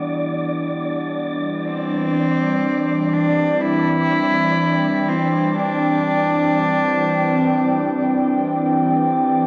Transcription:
Already playing: E3 G3 B3 D4 D5 F#5 D6
1.65 C4
2.66 G5
2.75 C4
3.13 D4
3.61 E4
5.08 C4
5.55 D4

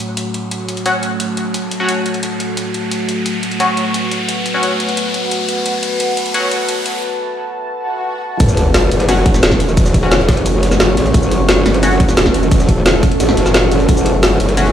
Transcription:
Already playing: A3 F#4 C#5 F#5, riser
0.17 A5, closed hi-hat
0.34 closed hi-hat
0.51 closed hi-hat
0.69 closed hi-hat
0.77 closed hi-hat
0.86 F#3 C#4 F#4, closed hi-hat
1.03 closed hi-hat
1.20 closed hi-hat
1.37 closed hi-hat
1.54 closed hi-hat
1.71 closed hi-hat
1.80 F#3 C#4 F#4
1.89 closed hi-hat
2.06 closed hi-hat
2.14 closed hi-hat
2.23 closed hi-hat
2.40 closed hi-hat
2.57 closed hi-hat
2.74 closed hi-hat
2.91 B4 F#5, closed hi-hat
3.09 closed hi-hat
3.26 closed hi-hat
3.43 closed hi-hat
3.51 closed hi-hat
3.60 F#3 C#4 F#4, closed hi-hat
3.77 closed hi-hat
3.94 closed hi-hat
4.11 closed hi-hat
4.29 closed hi-hat
4.46 closed hi-hat
4.54 F#3 C#4 F#4
4.63 closed hi-hat
4.80 closed hi-hat
4.89 closed hi-hat
4.97 closed hi-hat
5.14 closed hi-hat
5.31 closed hi-hat
5.49 closed hi-hat
5.66 A5, closed hi-hat
5.83 closed hi-hat
6.00 closed hi-hat
6.17 closed hi-hat
6.26 closed hi-hat
6.34 F#3 C#4 F#4, closed hi-hat
6.51 closed hi-hat
6.69 closed hi-hat
6.86 closed hi-hat
7.71 swell
8.40 F#1 A3 C#4 F#4 C#5, kick, closed hi-hat, ride, sub drop, cabasa
8.49 cabasa
8.57 closed hi-hat, ride, cabasa
8.74 snare, closed hi-hat, open hi-hat, cabasa
8.91 F#1, closed hi-hat, ride
9.00 snare, closed hi-hat
9.09 F#3 C#4 F#4, snare, closed hi-hat, ride, cabasa
9.17 snare
9.26 kick, closed hi-hat, ride
9.34 snare, cabasa
9.43 E1, snare, closed hi-hat, ride, cabasa
9.51 kick, snare, ride
9.60 closed hi-hat, ride
9.69 ride, cabasa
9.77 kick, closed hi-hat, ride, cabasa
9.86 snare, cabasa
9.94 kick, closed hi-hat, ride, cabasa
10.03 F#3 C#4 F#4, snare
10.11 snare, closed hi-hat, ride, cabasa
10.20 snare
10.29 F#1, kick, snare, closed hi-hat, ride
10.37 closed hi-hat, ride
10.46 closed hi-hat, ride, cabasa
10.63 snare, closed hi-hat, ride
10.71 snare, cabasa
10.80 F#1, snare, closed hi-hat, ride, cabasa
10.97 A1, snare, closed hi-hat, ride
11.06 snare, cabasa
11.14 F#1 A4, kick, closed hi-hat, ride, cabasa
11.23 cabasa
11.31 closed hi-hat, ride, cabasa
11.49 snare, closed hi-hat, open hi-hat, cabasa
11.66 F#1, snare, closed hi-hat, ride
11.74 snare, closed hi-hat
11.83 F#3 C#4 F#4, snare, closed hi-hat, ride, cabasa
11.91 snare
12.00 kick, closed hi-hat, ride
12.09 snare, cabasa
12.17 E1, snare, closed hi-hat, ride, cabasa
12.26 kick, snare, ride
12.34 closed hi-hat, ride
12.43 ride, cabasa
12.51 kick, closed hi-hat, ride, cabasa
12.60 snare, cabasa
12.69 kick, closed hi-hat, ride, cabasa
12.86 snare, closed hi-hat, ride, cabasa
13.03 kick, closed hi-hat, ride, cabasa
13.11 closed hi-hat
13.20 A1, closed hi-hat, ride, cabasa
13.29 snare
13.37 F#1, snare, closed hi-hat, ride
13.46 snare, cabasa
13.54 snare, closed hi-hat, ride, cabasa
13.71 snare, closed hi-hat, ride
13.80 snare, cabasa
13.89 F#1 C#5, kick, closed hi-hat, ride, cabasa
13.97 cabasa
14.06 closed hi-hat, ride, cabasa
14.23 snare, closed hi-hat, open hi-hat, cabasa
14.40 F#1, closed hi-hat, ride
14.49 snare, closed hi-hat
14.57 F#3 C#4 F#4, snare, closed hi-hat, ride, cabasa
14.66 snare

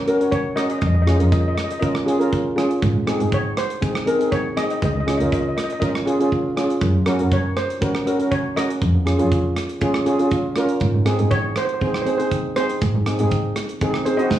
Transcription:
0.07 C#4 F#4 A#4, closed hi-hat
0.21 C#4 F#4 C#5, closed hi-hat
0.32 C#5, kick, closed hi-hat
0.56 C#4 F#4 A#4 D#5, cross-stick, closed hi-hat
0.64 D#5
0.70 D#5, closed hi-hat
0.79 F2 D#5, kick, closed hi-hat
0.87 D#5
0.95 F2 D#5
1.02 D#5
1.06 C#4 F4 G#4 D#5, cross-stick, closed hi-hat
1.16 F2 C#4 F4 A#4 D#5, closed hi-hat
1.24 D#5
1.32 D#5, kick, closed hi-hat
1.40 D#5
1.48 D#5
1.55 D#5, cross-stick, closed hi-hat
1.64 D#5
1.70 D#5, closed hi-hat
1.79 C#4 F4 A#4 D#5, kick, closed hi-hat
1.86 D#5
1.95 cross-stick
2.05 C#4 F4 G#4, closed hi-hat
2.18 C#4 F4 A#4, closed hi-hat
2.32 kick, closed hi-hat
2.56 C#4 F4 G#4, cross-stick, closed hi-hat
2.70 closed hi-hat
2.82 G#2, kick, closed hi-hat
2.95 G#2
3.06 C4 D#4 G#4, cross-stick, closed hi-hat
3.19 G#2 C4 D#4 G#4, closed hi-hat
3.32 C#5, kick, closed hi-hat
3.57 C5, cross-stick, closed hi-hat
3.70 closed hi-hat
3.81 C4 D#4 G#4, kick, closed hi-hat
3.95 cross-stick
4.06 C4 D#4 G#4 A#4, closed hi-hat
4.19 C4 D#4 G#4, closed hi-hat
4.32 C#5, kick, closed hi-hat
4.56 C4 D#4 G#4 D#5, cross-stick, closed hi-hat
4.63 D#5
4.70 D#5, closed hi-hat
4.78 D#5
4.82 C#2 D#5, kick, closed hi-hat
4.94 C#2 D#5
5.00 D#5
5.06 C#4 F4 G#4 D#5, cross-stick, closed hi-hat
5.17 C#2 C#4 F4 A#4 D#5, closed hi-hat
5.25 D#5
5.32 D#5, kick, closed hi-hat
5.41 D#5
5.49 D#5
5.57 D#5, cross-stick, closed hi-hat
5.64 D#5
5.70 D#5, closed hi-hat
5.80 C#4 F4 A#4 D#5, kick, closed hi-hat
5.89 D#5
5.95 cross-stick
6.05 C#4 F4 G#4, closed hi-hat
6.19 C#4 F4 G#4, closed hi-hat
6.32 kick, closed hi-hat
6.56 C#4 F4 G#4, cross-stick, closed hi-hat
6.70 closed hi-hat
6.81 F#2, kick, closed hi-hat
6.95 F#2
7.06 C#4 F#4 A#4, cross-stick, closed hi-hat
7.19 F#2 C#4 F#4 A#4, closed hi-hat
7.31 C#5, kick, closed hi-hat
7.56 C5, cross-stick, closed hi-hat
7.70 closed hi-hat
7.81 C#4 F#4 A#4, kick, closed hi-hat
7.95 cross-stick
8.06 C#4 F#4 A#4, closed hi-hat
8.19 C#4 F#4 A#4, closed hi-hat
8.31 C#5, kick, closed hi-hat
8.56 C#4 F#4 A#4 D#5, cross-stick, closed hi-hat
8.70 closed hi-hat
8.82 F2, kick, closed hi-hat
8.95 F2
9.05 C#4 F4 G#4, cross-stick, closed hi-hat
9.18 F2 C#4 F4 G#4, closed hi-hat
9.32 kick, closed hi-hat
9.56 cross-stick, closed hi-hat
9.69 closed hi-hat
9.81 C#4 F4 G#4, kick, closed hi-hat
9.94 cross-stick
10.06 C#4 F4 G#4, closed hi-hat
10.19 C#4 F4 G#4, closed hi-hat
10.31 kick, closed hi-hat
10.56 C#4 F4 A#4, cross-stick, closed hi-hat
10.69 closed hi-hat
10.80 G#2, kick, closed hi-hat
10.95 G#2
11.06 C4 D#4 G#4, cross-stick, closed hi-hat
11.19 G#2 C4 D#4 G#4, closed hi-hat
11.31 C#5, kick, closed hi-hat
11.56 C5, cross-stick, closed hi-hat
11.65 C5, closed hi-hat
11.74 C5
11.80 C4 D#4 G#4 C5, kick, closed hi-hat
11.87 C5
11.95 C5, cross-stick
12.02 C4 D#4 C5
12.07 G#4 C5, closed hi-hat
12.18 C4 D#4 G#4 C5, closed hi-hat
12.32 kick, closed hi-hat
12.56 C4 D#4 G#4 C5, cross-stick, closed hi-hat
12.70 closed hi-hat
12.81 G#2, kick, closed hi-hat
12.95 G#2
13.06 C4 D#4 G#4, cross-stick, closed hi-hat
13.19 G#2 C4 D#4 G#4, closed hi-hat
13.31 kick, closed hi-hat
13.56 cross-stick, closed hi-hat
13.69 closed hi-hat
13.81 C4 D#4 G#4, kick, closed hi-hat
13.94 cross-stick
14.05 C4 D#4 G#4 C5, closed hi-hat
14.17 C4 D#4 F#4 C5 D#5, closed hi-hat
14.31 kick, snare

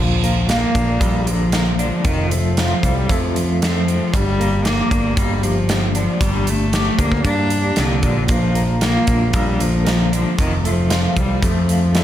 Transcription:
Already playing: A#1 A#2 F3
0.23 A#3, closed hi-hat
0.49 A#3 F4, snare, closed hi-hat
0.75 A#1 D4, kick, closed hi-hat
1.00 A#1 G3 A#3, kick, closed hi-hat
1.27 D3 F3, closed hi-hat
1.52 A#3, snare, closed hi-hat
1.79 F3 D4, closed hi-hat
2.05 F1 F2 D#3, kick, closed hi-hat
2.30 F3 A3, closed hi-hat
2.57 F4, snare, closed hi-hat
2.83 C2 G3 C4, kick, closed hi-hat
3.09 F2 F3 A3, kick, closed hi-hat
3.36 F3, closed hi-hat
3.62 F3 A3, snare, closed hi-hat
3.88 C4, closed hi-hat
4.13 G1 G2 G3, kick, closed hi-hat
4.39 A#3, closed hi-hat
4.65 A#3 G4, snare, closed hi-hat
4.91 G1 D4, kick, closed hi-hat
5.17 G1 G3 A#3, kick, closed hi-hat
5.43 F3 G3, closed hi-hat
5.69 snare, closed hi-hat
5.95 F3 D4, closed hi-hat
6.21 G1 G2 G3, kick, closed hi-hat
6.47 A3, closed hi-hat
6.73 G4, snare, closed hi-hat
6.98 D2 A#3 D4, kick, closed hi-hat
7.12 kick
7.24 G2 A#3 D4, kick, closed hi-hat
7.50 G3, closed hi-hat
7.76 C2 D3 A#3, snare, closed hi-hat
8.03 A#1 D4, kick, closed hi-hat
8.28 A#1 A#2 F3, kick, closed hi-hat
8.55 A#3, closed hi-hat
8.81 A#3 F4, snare, closed hi-hat
9.07 A#1 D4, kick, closed hi-hat
9.33 A#1 G3 A#3, kick, closed hi-hat
9.59 D3 F3, closed hi-hat
9.85 A#3, snare, closed hi-hat
10.12 F3 D4, closed hi-hat
10.39 F1 F2 D#3, kick, closed hi-hat
10.65 F3 A3, closed hi-hat
10.90 F4, snare, closed hi-hat
11.16 C2 G3 C4, kick, closed hi-hat
11.43 F2 F3 A3, kick, closed hi-hat
11.69 F3, closed hi-hat
11.95 D3 A3, snare, closed hi-hat

